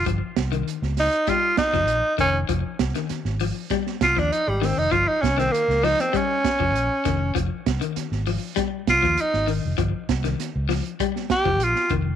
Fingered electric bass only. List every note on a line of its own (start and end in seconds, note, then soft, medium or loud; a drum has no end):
0.07 0.19 G1 loud
0.37 0.61 C2 medium
0.82 1.07 C#2 medium
1.58 muted fingered electric bass stroke soft
1.73 1.87 F1 medium
1.87 2.00 A#1 medium
2.19 2.43 F1 loud
2.49 2.62 F1 medium
2.80 2.92 C2 medium
3.10 muted fingered electric bass stroke soft
3.25 3.50 G#1 medium
4.01 4.14 C2 medium
4.17 4.29 D#2 medium
4.48 4.72 G#1 loud
4.78 4.89 F1 medium
4.93 5.05 G1 loud
5.23 5.47 C2 medium
5.68 5.93 C#2 medium
6.45 muted fingered electric bass stroke soft
6.60 6.75 F1 medium
6.75 6.87 A#1 medium
7.06 7.30 F1 loud
7.36 7.48 F1 loud
7.67 7.79 C2 medium
7.96 muted fingered electric bass stroke soft
8.12 8.36 G#1 medium
8.88 9.00 C2 medium
9.04 9.15 D#2 medium
9.34 9.58 G#1 medium
9.65 9.76 F1 medium
9.79 9.91 G1 loud
10.09 10.33 C2 medium
10.56 10.80 C#2 medium
11.30 muted fingered electric bass stroke soft
11.45 11.60 F1 medium
11.60 11.73 A#1 medium
11.90 12.15 F1 medium